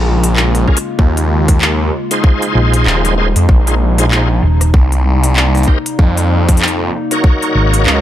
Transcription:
Already playing: detuned saw bass A#1, ambient pad C#3 G#3 A#3 F4
0.24 closed hi-hat
0.36 clap
0.55 cross-stick, closed hi-hat
0.68 tonewheel organ C#4 F4 G#4 A#4, kick
0.77 closed hi-hat
0.99 detuned saw bass D#2, kick
1.17 closed hi-hat
1.48 kick, closed hi-hat
1.61 clap
2.11 tonewheel organ D#4 F4 G#4 C5, closed hi-hat
2.24 ambient pad C3 F3 D#4, kick
2.42 closed hi-hat
2.55 fingered electric bass A#1
2.74 closed hi-hat
2.86 detuned saw bass D#1, clap
3.05 cross-stick, closed hi-hat
3.18 tonewheel organ D#4 F4 G#4 C5
3.36 detuned saw bass F2, closed hi-hat
3.49 detuned saw bass A#1, kick
3.67 tonewheel organ D#4 F4 G#4 C5, closed hi-hat
3.98 tonewheel organ D#4 F4 G#4 C5, closed hi-hat
4.11 tonewheel organ D#4 F4 G#4 C5, clap
4.43 fingered electric bass D#1
4.61 cross-stick, closed hi-hat
4.74 detuned saw bass C2, ambient pad G3 A#3, kick
4.92 closed hi-hat
5.24 closed hi-hat
5.36 clap
5.55 cross-stick, closed hi-hat
5.57 closed hi-hat
5.63 closed hi-hat
5.68 tonewheel organ D#4 G4 A#4 C5, kick
5.86 closed hi-hat
5.99 detuned saw bass F2, kick
6.17 closed hi-hat
6.49 kick, closed hi-hat
6.57 closed hi-hat
6.61 clap
6.68 closed hi-hat
7.11 tonewheel organ D#4 F#4 A#4 C#5, closed hi-hat
7.24 ambient pad C#3 F#3, kick
7.42 closed hi-hat
7.55 fingered electric bass G#1
7.74 closed hi-hat
7.86 detuned saw bass C#2, clap

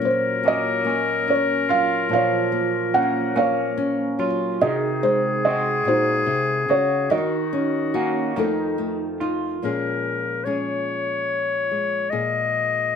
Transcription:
Already playing: nylon-string guitar A#2 F#3 C#4, felt piano F4 F#4, clarinet A#4
0.01 nylon-string guitar A#3, felt piano C5
0.43 clean electric guitar A#3 C#4, nylon-string guitar C#4
0.48 felt piano F#4 D#5
0.85 nylon-string guitar A#3, clean electric guitar C#4
1.28 nylon-string guitar C#4, felt piano C#5
1.69 nylon-string guitar F#3, clean electric guitar F4, felt piano F5
2.09 nylon-string guitar A#2, clean electric guitar F3
2.13 felt piano C#5 F5
2.52 nylon-string guitar A#3
2.94 clean electric guitar A#3 C#4, nylon-string guitar C#4, felt piano F#5
3.36 nylon-string guitar A#3, clean electric guitar C#4, felt piano C#5 F5
3.78 nylon-string guitar C#4
4.19 nylon-string guitar F#3, clean electric guitar F4
4.61 nylon-string guitar C3, clean electric guitar D#3, felt piano F#4 G#4 D#5, clarinet G#4
5.03 nylon-string guitar G#3, felt piano C5
5.45 clean electric guitar G#3 C4 F#4, felt piano D#5
5.85 nylon-string guitar A#2, felt piano D#4 F#4 C5
6.26 nylon-string guitar C3
6.68 nylon-string guitar C#3, clean electric guitar F#4, felt piano C#5
7.10 nylon-string guitar D#3, clean electric guitar D#3, clarinet F#4, felt piano F#4 A#4 D#5
7.53 nylon-string guitar C#4
7.94 clean electric guitar A#3 C#4 F#4, nylon-string guitar F#4
8.36 nylon-string guitar F2 F3 A3 D#4 A4, clean electric guitar D#3, clarinet D#4
8.78 nylon-string guitar A3
9.20 nylon-string guitar D#4, clean electric guitar F4
9.62 nylon-string guitar A#2 F3 G#3 C#4 G#4, clarinet A#4
10.44 nylon-string guitar G#3 C#4 G#4, clarinet C#5
11.71 nylon-string guitar G#3
12.10 nylon-string guitar A#2 G#4, clarinet D#5

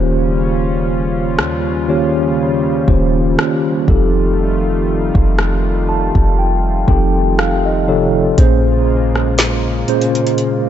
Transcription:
Already playing: 808-style bass D#1, analog synth pad C#3 G3 C#4 F4, tine electric piano D#3 A#3 C#4 F4 G4 C5
1.38 808-style bass D#2, cross-stick
1.88 tine electric piano D#3 A#3 C#4 F4 G4 C#5
2.88 808-style bass D#1, tine electric piano D#3 A#3 C#4 F4 G4 C5, kick
3.39 cross-stick
3.88 808-style bass F1, analog synth pad D#3 A3 F4, tine electric piano F3 C4 D#4 G4 A4, kick
5.15 808-style bass F1, kick
5.39 cross-stick
5.89 tine electric piano A5
6.15 808-style bass F1, kick
6.39 tine electric piano G5
6.88 808-style bass F1, tine electric piano F3 C4 D#4 G4 A4 G5, kick
7.38 tine electric piano F5, cross-stick
7.66 tine electric piano D#5
7.88 tine electric piano C3 F3 D#4 G4 A4 C#5
8.38 808-style bass A#1, tine electric piano A#2 A#3 C#4 G#4 C5, analog synth pad C#3 G#3 A#3 F4, kick, closed hi-hat
9.16 cross-stick
9.38 snare, closed hi-hat
9.88 tine electric piano A#2 A#3 C#4 G#4 C5, closed hi-hat
10.01 closed hi-hat
10.15 closed hi-hat
10.27 closed hi-hat
10.38 closed hi-hat

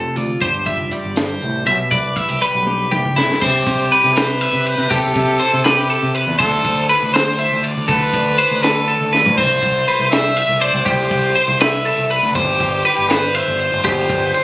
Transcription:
Already playing: clean electric guitar C3 F3 A3 A4 C5
0.16 fingered electric bass D2, clean electric guitar F4 D5, closed hi-hat
0.41 fingered electric bass G1, clean electric guitar G2 G4 C5, kick, closed hi-hat
0.66 clean electric guitar F4 E5, kick, closed hi-hat
0.80 fingered electric bass F1
0.91 clean electric guitar G3 G4 D5, closed hi-hat
1.04 fingered electric bass G1
1.16 clean electric guitar G2 C5, snare, closed hi-hat
1.41 fingered electric bass C2, clean electric guitar A2, closed hi-hat
1.66 fingered electric bass B1, clean electric guitar B2 E5, closed hi-hat
1.91 fingered electric bass C2, clean electric guitar B4 D5, kick, closed hi-hat
2.16 clean electric guitar E4 E5, kick, closed hi-hat
2.29 fingered electric bass C2, clean electric guitar G4
2.41 clean electric guitar G3 B4, closed hi-hat
2.55 fingered electric bass B1
2.67 clean electric guitar G4, high tom
2.91 fingered electric bass C2, clean electric guitar G2 G4, mid tom
3.05 mid tom
3.16 fingered electric bass C3, clean electric guitar E4 B4, snare
3.31 snare
3.41 fingered electric bass C3, trumpet G4, clean electric guitar C5, kick, crash
3.67 fingered electric bass C3, kick, ride
3.92 clean electric guitar B4, ride
4.04 fingered electric bass C3
4.15 trumpet B4, clean electric guitar C5, snare, ride
4.41 clean electric guitar E5, ride
4.53 fingered electric bass C3
4.66 clean electric guitar C5, ride
4.78 fingered electric bass C3
4.90 fingered electric bass C3, clean electric guitar G4, trumpet A4, kick, ride
5.15 fingered electric bass C3, kick, ride
5.40 clean electric guitar C5, ride
5.53 fingered electric bass C3
5.64 trumpet G4, clean electric guitar B4, snare, ride
5.90 clean electric guitar A4, ride
6.03 fingered electric bass C3
6.15 clean electric guitar B4, ride
6.27 fingered electric bass E2
6.39 fingered electric bass D2, trumpet A4, clean electric guitar C5, kick, ride
6.64 fingered electric bass D2, kick, ride
6.89 trumpet B4, clean electric guitar B4, ride
7.03 fingered electric bass D2
7.14 clean electric guitar C5, trumpet C5, snare, ride
7.39 clean electric guitar E5, ride
7.52 fingered electric bass D2
7.64 clean electric guitar D5, ride
7.77 fingered electric bass D2
7.88 fingered electric bass D2, clean electric guitar A4, trumpet B4, kick, ride
8.14 fingered electric bass D2, kick, ride
8.38 clean electric guitar C5, ride
8.51 fingered electric bass D2
8.63 trumpet A4, clean electric guitar B4, snare, ride
8.88 clean electric guitar A4, ride
9.01 fingered electric bass D2
9.13 clean electric guitar B4, snare
9.26 fingered electric bass D2, floor tom
9.37 fingered electric bass C2, trumpet C5, clean electric guitar C5, kick, crash
9.63 fingered electric bass C2, kick, ride
9.88 clean electric guitar B4, ride
9.99 fingered electric bass C2
10.10 clean electric guitar C5, trumpet E5, snare, ride
10.37 clean electric guitar E5, ride
10.49 fingered electric bass C2
10.60 clean electric guitar C5, trumpet D5, ride
10.74 fingered electric bass C2
10.85 fingered electric bass C2, clean electric guitar G4, trumpet C5, kick, ride
11.11 fingered electric bass C2, kick, ride
11.35 clean electric guitar C5, ride
11.48 fingered electric bass C2
11.60 clean electric guitar B4, trumpet E5, snare, ride
11.85 clean electric guitar A4, ride
11.98 fingered electric bass C2
12.10 clean electric guitar B4, ride
12.23 fingered electric bass D2
12.35 fingered electric bass G1, trumpet G4, clean electric guitar C5, kick, ride
12.60 fingered electric bass G1, kick, ride
12.85 clean electric guitar B4, ride
12.98 fingered electric bass G1
13.09 trumpet B4, clean electric guitar C5, snare, ride
13.34 trumpet C5, clean electric guitar E5, ride
13.48 fingered electric bass G1
13.59 clean electric guitar C5, ride
13.73 fingered electric bass G1
13.84 fingered electric bass G1, clean electric guitar G4, trumpet C5, kick, ride
14.10 fingered electric bass G1, kick, ride
14.34 clean electric guitar C5, ride

